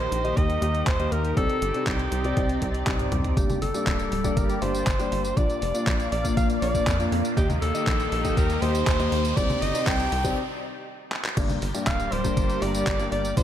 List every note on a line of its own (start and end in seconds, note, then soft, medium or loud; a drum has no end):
0.00 1.35 D#4 medium
0.00 3.33 G4 medium
0.00 1.33 A#4 medium
0.00 0.38 C5 loud
0.12 0.34 A#1 medium
0.12 closed hi-hat loud
0.24 0.55 D#3 medium
0.24 0.55 A#3 medium
0.24 0.55 D#4 medium
0.24 0.55 G4 medium
0.24 0.55 D#5 loud
0.24 closed hi-hat soft
0.37 0.59 D#2 loud
0.37 0.88 D#5 loud
0.37 kick loud
0.37 closed hi-hat medium
0.50 closed hi-hat soft
0.62 0.84 D#2 medium
0.62 0.81 D#3 loud
0.62 0.81 A#3 medium
0.62 0.81 D#4 medium
0.62 0.81 G4 medium
0.62 0.81 D#5 loud
0.62 closed hi-hat medium
0.75 closed hi-hat soft
0.87 1.09 D#2 loud
0.87 1.13 C5 loud
0.87 kick loud
0.87 clap loud
0.87 closed hi-hat medium
0.99 1.34 D#3 medium
0.99 1.34 A#3 medium
0.99 1.34 D#4 medium
0.99 1.34 G4 medium
0.99 1.34 D#5 loud
0.99 closed hi-hat soft
1.12 1.34 D#2 medium
1.12 1.36 A#4 loud
1.12 closed hi-hat medium
1.25 closed hi-hat soft
1.37 1.48 C2 loud
1.37 1.56 C3 medium
1.37 1.56 C4 medium
1.37 3.35 C4 medium
1.37 1.56 D#4 medium
1.37 3.35 D#4 medium
1.37 1.56 G4 medium
1.37 1.89 A4 loud
1.37 3.35 D5 medium
1.37 1.56 D5 medium
1.37 kick loud
1.37 closed hi-hat medium
1.50 closed hi-hat soft
1.62 1.73 G1 loud
1.62 closed hi-hat loud
1.74 2.05 C3 medium
1.74 2.05 C4 medium
1.74 2.05 D#4 medium
1.74 2.05 G4 medium
1.74 2.05 D5 medium
1.74 closed hi-hat soft
1.87 2.09 C2 loud
1.87 2.87 G4 medium
1.87 kick loud
1.87 clap loud
1.87 closed hi-hat medium
1.99 closed hi-hat soft
2.12 2.34 C2 medium
2.12 closed hi-hat loud
2.24 2.55 C3 medium
2.24 2.55 C4 medium
2.24 2.55 D#4 medium
2.24 2.55 G4 medium
2.24 2.55 D5 loud
2.24 closed hi-hat soft
2.37 2.59 C2 medium
2.37 kick loud
2.37 closed hi-hat medium
2.49 closed hi-hat soft
2.62 2.84 C2 loud
2.62 kick medium
2.62 closed hi-hat loud
2.74 closed hi-hat soft
2.87 3.09 C2 medium
2.87 3.34 C3 medium
2.87 3.34 C4 medium
2.87 3.34 D#4 medium
2.87 3.34 G4 medium
2.87 3.34 D5 medium
2.87 kick loud
2.87 clap loud
2.87 closed hi-hat medium
2.99 closed hi-hat soft
2.99 high tom medium
3.12 3.34 C2 loud
3.12 closed hi-hat medium
3.12 mid tom medium
3.24 closed hi-hat soft
3.24 mid tom medium
3.37 3.59 G1 loud
3.37 3.56 G2 medium
3.37 5.35 G3 medium
3.37 3.56 A#3 medium
3.37 3.56 D4 medium
3.37 3.56 G4 medium
3.37 3.60 G4 medium
3.37 5.35 G4 medium
3.37 3.56 D5 medium
3.37 5.35 D5 medium
3.37 kick loud
3.37 closed hi-hat medium
3.37 tambourine soft
3.37 riser medium
3.50 closed hi-hat soft
3.50 tambourine soft
3.50 high conga medium
3.62 3.73 G1 medium
3.62 4.38 A4 loud
3.62 open hi-hat loud
3.74 4.05 G2 medium
3.74 4.05 A#3 medium
3.74 4.05 D4 medium
3.74 4.05 G4 medium
3.74 4.05 D5 medium
3.74 closed hi-hat soft
3.74 tambourine medium
3.87 4.09 D1 medium
3.87 kick loud
3.87 clap loud
3.87 closed hi-hat medium
3.87 tambourine soft
3.99 closed hi-hat soft
3.99 tambourine soft
4.12 4.34 D1 medium
4.12 open hi-hat medium
4.24 4.55 G2 medium
4.24 4.55 A#3 medium
4.24 4.55 D4 medium
4.24 4.55 G4 medium
4.24 4.55 D5 loud
4.24 kick medium
4.24 closed hi-hat soft
4.24 tambourine medium
4.37 4.59 G1 medium
4.37 4.61 A#4 medium
4.37 kick loud
4.37 closed hi-hat medium
4.37 tambourine soft
4.49 closed hi-hat soft
4.49 tambourine soft
4.62 4.84 G1 medium
4.62 4.81 G2 loud
4.62 4.81 A#3 medium
4.62 4.81 D4 medium
4.62 4.81 G4 medium
4.62 5.38 C5 loud
4.62 4.81 D5 loud
4.62 open hi-hat loud
4.75 closed hi-hat soft
4.75 tambourine medium
4.87 5.09 G1 loud
4.87 kick loud
4.87 clap loud
4.87 closed hi-hat medium
4.87 tambourine soft
4.99 5.34 G2 medium
4.99 5.34 A#3 medium
4.99 5.34 D4 medium
4.99 5.34 G4 medium
4.99 5.34 D5 medium
4.99 closed hi-hat soft
4.99 tambourine soft
5.12 5.34 G1 medium
5.12 open hi-hat medium
5.25 closed hi-hat soft
5.25 tambourine medium
5.37 5.48 A#1 loud
5.37 5.56 A#2 medium
5.37 5.56 A#3 medium
5.37 9.33 A#3 medium
5.37 5.56 D4 medium
5.37 5.56 F4 medium
5.37 5.56 D5 medium
5.37 6.12 D5 loud
5.37 7.35 D5 medium
5.37 7.35 F5 medium
5.37 kick loud
5.37 closed hi-hat medium
5.37 tambourine soft
5.50 closed hi-hat soft
5.50 tambourine soft
5.62 5.73 F1 loud
5.62 open hi-hat loud
5.74 6.05 A#2 medium
5.74 6.05 A#3 medium
5.74 6.05 D4 medium
5.74 6.05 F4 medium
5.74 6.05 D5 medium
5.74 closed hi-hat soft
5.74 tambourine medium
5.87 6.09 A#1 medium
5.87 kick loud
5.87 clap loud
5.87 closed hi-hat medium
5.87 tambourine soft
6.00 closed hi-hat soft
6.00 tambourine soft
6.12 6.34 A#1 medium
6.12 6.35 D5 loud
6.12 open hi-hat medium
6.24 6.55 A#2 medium
6.24 6.55 A#3 medium
6.24 6.55 D4 medium
6.24 6.55 F4 medium
6.24 6.55 D5 loud
6.24 kick medium
6.24 closed hi-hat soft
6.24 tambourine medium
6.37 6.59 A#1 medium
6.37 6.48 F5 loud
6.37 kick loud
6.37 closed hi-hat medium
6.37 tambourine soft
6.50 closed hi-hat soft
6.50 tambourine soft
6.62 6.84 A#1 loud
6.62 6.81 A#2 loud
6.62 6.81 A#3 medium
6.62 6.81 D4 medium
6.62 6.81 F4 medium
6.62 6.81 D5 loud
6.62 7.09 D5 loud
6.62 open hi-hat loud
6.75 kick medium
6.75 closed hi-hat soft
6.75 tambourine medium
6.87 7.09 F2 medium
6.87 kick loud
6.87 clap loud
6.87 closed hi-hat medium
6.87 tambourine soft
6.99 7.34 A#2 medium
6.99 7.34 A#3 medium
6.99 7.34 D4 medium
6.99 7.34 F4 medium
6.99 7.34 D5 loud
6.99 closed hi-hat soft
6.99 tambourine soft
7.12 7.23 F2 medium
7.12 open hi-hat medium
7.25 closed hi-hat soft
7.25 tambourine medium
7.37 7.59 D#2 loud
7.37 7.56 D#3 medium
7.37 7.56 A#3 medium
7.37 7.56 D#4 medium
7.37 9.35 D#4 medium
7.37 7.48 G4 medium
7.37 7.56 G4 medium
7.37 9.35 G4 medium
7.37 7.56 D#5 medium
7.37 kick loud
7.37 closed hi-hat medium
7.37 tambourine soft
7.50 closed hi-hat soft
7.50 tambourine soft
7.50 high conga medium
7.62 7.73 D#2 medium
7.62 8.39 A4 loud
7.62 open hi-hat loud
7.74 8.05 D#3 medium
7.74 8.05 A#3 medium
7.74 8.05 D#4 medium
7.74 8.05 G4 medium
7.74 8.05 D#5 medium
7.74 closed hi-hat soft
7.74 tambourine medium
7.87 8.09 A#1 medium
7.87 kick loud
7.87 clap loud
7.87 closed hi-hat medium
7.87 tambourine soft
8.00 closed hi-hat soft
8.00 tambourine soft
8.12 8.34 A#1 medium
8.12 open hi-hat medium
8.24 8.55 D#3 medium
8.24 8.55 A#3 medium
8.24 8.55 D#4 medium
8.24 8.55 G4 medium
8.24 8.55 D#5 loud
8.24 kick medium
8.24 closed hi-hat soft
8.24 tambourine medium
8.37 8.59 D#2 medium
8.37 8.63 A#4 loud
8.37 kick loud
8.37 closed hi-hat medium
8.37 tambourine soft
8.50 closed hi-hat soft
8.50 tambourine soft
8.62 8.84 D#2 medium
8.62 8.81 D#3 loud
8.62 8.81 A#3 medium
8.62 8.81 D#4 medium
8.62 8.81 G4 medium
8.62 9.38 C5 loud
8.62 8.81 D#5 loud
8.62 open hi-hat loud
8.75 closed hi-hat soft
8.75 tambourine medium
8.87 9.09 D#2 loud
8.87 kick loud
8.87 clap loud
8.87 closed hi-hat medium
8.87 tambourine soft
8.99 9.34 D#3 medium
8.99 9.34 A#3 medium
8.99 9.34 D#4 medium
8.99 9.34 G4 medium
8.99 9.34 D#5 loud
8.99 closed hi-hat soft
8.99 tambourine soft
9.12 9.34 D#2 medium
9.12 open hi-hat medium
9.25 closed hi-hat soft
9.25 tambourine medium
9.37 9.48 C2 loud
9.37 9.56 C3 medium
9.37 9.56 C4 medium
9.37 10.36 C4 medium
9.37 9.56 D#4 medium
9.37 10.36 D#4 medium
9.37 9.56 G4 medium
9.37 10.36 G4 medium
9.37 9.64 D5 loud
9.37 9.56 D5 medium
9.37 10.36 D5 medium
9.37 kick loud
9.37 closed hi-hat medium
9.37 tambourine medium
9.50 closed hi-hat soft
9.50 tambourine soft
9.50 high conga medium
9.62 9.73 G1 loud
9.62 9.89 D#5 loud
9.62 open hi-hat loud
9.74 10.05 C3 medium
9.74 10.05 C4 medium
9.74 10.05 D#4 medium
9.74 10.05 G4 medium
9.74 10.05 D5 medium
9.74 closed hi-hat soft
9.74 tambourine medium
9.87 10.09 C2 loud
9.87 10.37 G5 loud
9.87 kick loud
9.87 clap loud
9.87 closed hi-hat medium
9.87 tambourine soft
10.00 closed hi-hat soft
10.00 tambourine soft
10.12 10.34 C2 medium
10.12 open hi-hat medium
10.24 10.37 C3 medium
10.24 10.37 C4 medium
10.24 10.37 D#4 medium
10.24 10.37 G4 medium
10.24 10.37 D5 loud
10.24 kick medium
10.24 closed hi-hat soft
10.24 tambourine medium
11.12 clap medium
11.25 clap medium
11.37 11.59 G1 loud
11.37 11.56 G2 medium
11.37 13.35 G3 medium
11.37 11.56 A#3 medium
11.37 11.56 D4 medium
11.37 11.56 G4 medium
11.37 13.35 G4 medium
11.37 13.35 A#4 medium
11.37 11.56 D5 medium
11.37 13.43 D5 medium
11.37 kick loud
11.37 closed hi-hat loud
11.37 crash loud
11.37 tambourine soft
11.50 closed hi-hat soft
11.50 tambourine soft
11.50 high conga medium
11.62 11.73 G1 medium
11.62 open hi-hat loud
11.75 12.05 G2 medium
11.75 12.05 A#3 medium
11.75 12.05 D4 medium
11.75 12.05 G4 medium
11.75 12.05 D5 medium
11.75 closed hi-hat soft
11.75 tambourine medium
11.87 12.09 D1 medium
11.87 12.14 F5 loud
11.87 kick loud
11.87 clap loud
11.87 closed hi-hat medium
11.87 tambourine soft
12.00 closed hi-hat soft
12.00 tambourine soft
12.12 12.34 D1 medium
12.12 12.64 C5 loud
12.12 open hi-hat loud
12.24 12.55 G2 medium
12.24 12.55 A#3 medium
12.24 12.55 D4 medium
12.24 12.55 G4 medium
12.24 12.55 D5 loud
12.24 kick medium
12.24 closed hi-hat soft
12.24 tambourine medium
12.37 12.59 G1 loud
12.37 kick loud
12.37 closed hi-hat loud
12.37 tambourine soft
12.50 closed hi-hat soft
12.50 tambourine soft
12.62 12.84 G1 medium
12.62 12.81 G2 loud
12.62 12.81 A#3 medium
12.62 12.81 D4 medium
12.62 12.81 G4 medium
12.62 12.81 D5 loud
12.62 13.12 D5 loud
12.62 open hi-hat loud
12.75 closed hi-hat soft
12.75 tambourine medium
12.87 13.09 G1 loud
12.87 kick loud
12.87 clap loud
12.87 closed hi-hat loud
12.87 tambourine soft
12.99 13.34 G2 medium
12.99 13.34 A#3 medium
12.99 13.34 D4 medium
12.99 13.34 G4 medium
12.99 13.34 D5 loud
12.99 closed hi-hat soft
12.99 tambourine soft
13.12 13.34 G1 medium
13.12 13.35 D5 loud
13.12 open hi-hat medium
13.25 closed hi-hat soft
13.25 tambourine medium
13.37 13.43 A#1 loud
13.37 13.43 A#2 medium
13.37 13.43 A#3 medium
13.37 13.43 D4 medium
13.37 13.43 F4 medium
13.37 13.43 A#4 medium
13.37 13.43 C5 loud
13.37 13.43 D5 medium
13.37 13.43 F5 medium
13.37 kick loud
13.37 closed hi-hat loud
13.37 tambourine soft